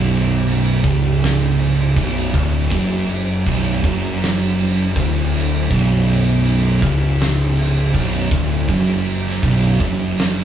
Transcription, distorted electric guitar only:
0.00 0.83 B1 loud
0.84 1.96 C#2 loud
1.97 2.33 B1 loud
2.35 2.71 D2 loud
2.72 3.45 F#2 loud
3.46 3.83 B1 loud
3.84 4.95 F#2 loud
4.97 5.70 D2 medium
5.70 6.81 B1 loud
6.82 7.93 C#2 loud
7.95 8.30 B1 loud
8.31 8.67 D2 loud
8.69 9.42 F#2 loud
9.44 9.80 B1 loud
9.81 10.44 F#2 loud

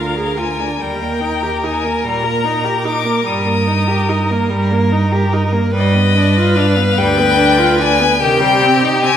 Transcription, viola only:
0.00 0.18 F4 soft
0.16 0.40 G#4 medium
0.39 0.62 F4 soft
0.60 0.79 D4 soft
0.80 1.02 G3 medium
1.01 1.22 A#3 medium
1.20 1.44 D#4 soft
1.43 1.65 G4 medium
1.64 1.86 D#4 medium
1.85 2.05 A#3 medium
2.04 2.25 G3 medium
2.24 2.47 A#3 medium
2.45 2.66 D#4 medium
2.65 2.86 G4 medium
2.85 3.06 D#4 medium
3.05 3.24 A#3 medium
3.25 3.47 G3 medium
3.45 3.69 A#3 medium
3.67 3.89 D#4 medium
3.88 4.11 G4 medium
4.09 4.32 D#4 medium
4.31 4.51 A#3 medium
4.50 4.73 G3 medium
4.71 4.94 A#3 medium
4.92 5.14 D#4 medium
5.12 5.35 G4 medium
5.33 5.54 D#4 medium
5.52 5.73 A#3 medium
5.74 5.96 G3 medium
5.94 6.17 B3 medium
6.16 6.38 D4 medium
6.37 6.58 F4 medium
6.56 6.78 D4 medium
6.76 7.00 B3 medium
6.98 7.19 G3 medium
7.18 7.39 B3 medium
7.37 7.60 D4 medium
7.58 7.82 F4 medium
7.80 8.01 D4 medium
8.00 8.21 B3 medium
8.22 8.42 D#3 medium
8.40 8.64 G3 medium
8.62 8.84 C4 medium
8.83 9.05 D#4 medium
9.04 9.17 C4 medium

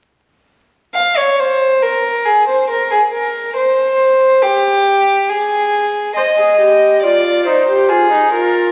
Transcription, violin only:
0.94 1.18 F5 medium
1.17 1.41 C#5 medium
1.39 1.84 C5 medium
1.82 2.27 A#4 medium
2.25 2.47 G#4 medium
2.48 2.69 C5 medium
2.70 2.91 A#4 medium
2.91 2.99 G#4 medium
3.13 3.56 A#4 medium
3.56 4.44 C5 medium
4.42 5.31 G4 medium
5.29 6.15 G#4 medium
6.16 7.01 D#5 medium
7.03 7.45 D5 medium
7.46 7.90 C5 medium
7.89 8.32 G#4 medium
8.33 8.72 A#4 medium

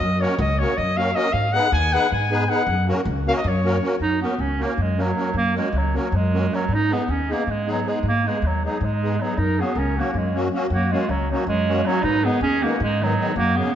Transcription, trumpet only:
0.00 0.22 D#5 loud
0.21 0.40 C#5 medium
0.40 0.60 D#5 medium
0.59 0.79 C#5 medium
0.77 0.98 D#5 medium
0.97 1.17 F5 medium
1.15 1.34 D#5 loud
1.32 1.54 F5 loud
1.53 1.72 F#5 loud
1.73 1.95 G#5 loud
1.93 2.11 F#5 loud
2.13 2.50 G#5 medium
2.49 2.87 F#5 loud
3.28 3.32 F5 loud
3.37 3.49 D#5 medium
3.48 4.02 C#5 medium
8.66 8.82 D#4 medium
8.82 9.21 D#4 medium
9.21 9.41 D#4 medium
9.39 9.60 A#4 medium
9.58 9.78 G#4 medium
9.77 9.98 A#4 medium
9.96 10.17 F#4 medium
10.15 10.35 C#4 medium
10.71 10.93 F#4 medium
10.92 11.10 F4 medium
11.09 11.30 C#4 medium
11.30 11.46 D#4 medium
11.47 11.87 C#4 medium
11.85 12.05 D#4 medium
12.04 12.25 B4 medium
12.23 12.42 G#4 medium
12.42 12.64 G#4 medium
12.63 12.81 F#4 medium
12.83 13.02 D#4 medium
13.02 13.35 D#4 medium
13.36 13.58 F#4 medium
13.57 13.73 G#4 medium

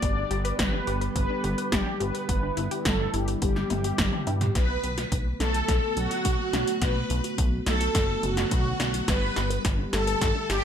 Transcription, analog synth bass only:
0.02 0.25 G1 loud
0.31 0.53 G1 medium
0.59 0.81 G1 loud
0.88 1.10 G1 medium
1.16 1.27 G1 loud
1.44 1.55 G1 medium
1.72 1.83 G1 medium
2.01 2.12 G1 medium
2.29 2.51 G1 medium
2.57 2.68 G1 medium
2.85 3.07 G1 loud
3.14 3.36 G1 medium
3.42 3.64 G1 loud
3.71 3.93 G1 medium
3.99 4.10 G1 medium
4.27 4.49 G2 medium
4.55 4.77 B1 loud
4.84 5.06 B1 medium
5.12 5.34 B1 loud
5.40 5.62 B1 medium
5.68 5.80 B1 loud
5.97 6.08 B1 medium
6.25 6.36 B1 medium
6.53 6.64 B1 medium
6.82 7.04 B1 medium
7.10 7.21 B1 medium
7.38 7.60 B1 loud
7.67 7.89 B1 medium
7.95 8.17 F#1 medium
8.23 8.45 F#1 medium
8.52 8.74 B1 loud
8.80 9.02 B1 medium
9.08 9.30 G1 loud
9.37 9.59 G1 medium
9.65 9.87 G1 loud
9.93 10.15 G1 medium
10.21 10.32 G1 medium
10.50 10.61 G1 medium

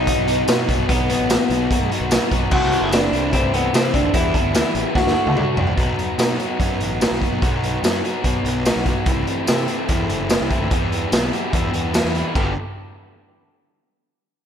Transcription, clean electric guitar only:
0.00 0.85 D#4 loud
0.89 1.08 B3 medium
1.10 1.87 B3 medium
2.53 2.83 F#4 loud
2.84 2.93 E4 loud
2.93 3.33 D4 loud
3.33 3.52 C4 loud
3.55 3.74 B3 medium
3.75 3.94 C4 loud
3.94 4.14 D4 loud
4.14 4.98 E4 loud
4.95 5.53 F#4 medium

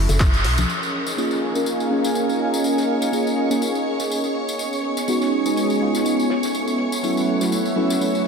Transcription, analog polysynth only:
1.17 1.52 A#3 medium
1.17 1.52 C#4 medium
1.17 1.52 F4 medium
1.17 1.53 G#4 medium
1.55 1.88 A#3 medium
1.55 1.88 C#4 medium
1.55 1.88 F4 medium
1.55 1.89 A#4 medium
1.90 3.10 A#3 medium
1.90 3.10 C#4 medium
1.90 3.10 F4 medium
1.90 3.11 G#4 medium
3.12 3.47 A#3 medium
3.12 3.47 C#4 medium
3.12 3.48 F4 medium
3.12 3.48 G#4 medium
3.50 3.62 A#3 medium
3.50 3.62 C#4 medium
3.50 3.63 F4 medium
3.50 3.63 G#4 medium
5.08 5.42 G#3 medium
5.08 5.43 B3 medium
5.08 5.43 D#4 medium
5.08 5.43 F#4 medium
5.45 5.78 G#3 medium
5.45 5.78 B3 medium
5.45 5.79 D#4 medium
5.45 5.79 G#4 loud
5.81 6.28 G#3 medium
5.81 6.29 B3 medium
5.81 6.29 D#4 medium
5.81 6.29 F4 medium
7.03 7.37 F#3 medium
7.03 7.38 A3 medium
7.03 7.38 C#4 medium
7.03 7.38 E4 medium
7.40 7.52 F#3 medium
7.40 7.53 A3 medium
7.40 7.53 C#4 medium
7.40 7.53 E4 medium
7.76 7.97 F#3 medium
7.76 7.97 A3 medium
7.76 7.97 C#4 medium
7.76 7.98 E4 loud
8.00 8.22 F#3 medium
8.00 8.22 A3 medium
8.00 8.23 C#4 medium
8.00 8.23 E4 medium

